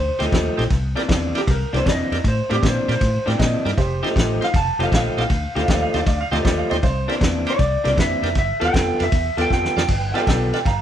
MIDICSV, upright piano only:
0, 0, Header, 1, 2, 480
1, 0, Start_track
1, 0, Tempo, 382653
1, 886, Time_signature, 4, 2, 24, 8
1, 13568, End_track
2, 0, Start_track
2, 0, Title_t, "Upright piano"
2, 0, Program_c, 0, 0
2, 4114, Note_on_c, 0, 79, 60
2, 4254, Note_off_c, 0, 79, 0
2, 4254, Note_on_c, 0, 75, 76
2, 4718, Note_off_c, 0, 75, 0
2, 4736, Note_on_c, 0, 67, 67
2, 4738, Note_on_c, 0, 72, 78
2, 5331, Note_off_c, 0, 67, 0
2, 5357, Note_off_c, 0, 72, 0
2, 7147, Note_on_c, 0, 74, 83
2, 7294, Note_off_c, 0, 74, 0
2, 7303, Note_on_c, 0, 77, 71
2, 7451, Note_off_c, 0, 77, 0
2, 7454, Note_on_c, 0, 74, 77
2, 7603, Note_off_c, 0, 74, 0
2, 7621, Note_on_c, 0, 74, 83
2, 7771, Note_off_c, 0, 74, 0
2, 7783, Note_on_c, 0, 77, 81
2, 7932, Note_off_c, 0, 77, 0
2, 7943, Note_on_c, 0, 74, 61
2, 8078, Note_off_c, 0, 74, 0
2, 8096, Note_on_c, 0, 74, 84
2, 8248, Note_off_c, 0, 74, 0
2, 8253, Note_on_c, 0, 77, 62
2, 8404, Note_on_c, 0, 74, 73
2, 8406, Note_off_c, 0, 77, 0
2, 8562, Note_off_c, 0, 74, 0
2, 8574, Note_on_c, 0, 72, 85
2, 9037, Note_off_c, 0, 72, 0
2, 12695, Note_on_c, 0, 78, 67
2, 12717, Note_off_c, 0, 78, 0
2, 12749, Note_on_c, 0, 74, 71
2, 12754, Note_on_c, 0, 79, 94
2, 12885, Note_off_c, 0, 74, 0
2, 12893, Note_off_c, 0, 79, 0
2, 12906, Note_on_c, 0, 74, 71
2, 12913, Note_on_c, 0, 79, 74
2, 13198, Note_off_c, 0, 74, 0
2, 13199, Note_off_c, 0, 79, 0
2, 13217, Note_on_c, 0, 74, 63
2, 13218, Note_on_c, 0, 79, 74
2, 13358, Note_off_c, 0, 74, 0
2, 13365, Note_off_c, 0, 79, 0
2, 13372, Note_on_c, 0, 77, 65
2, 13383, Note_on_c, 0, 82, 68
2, 13568, Note_off_c, 0, 77, 0
2, 13568, Note_off_c, 0, 82, 0
2, 13568, End_track
0, 0, End_of_file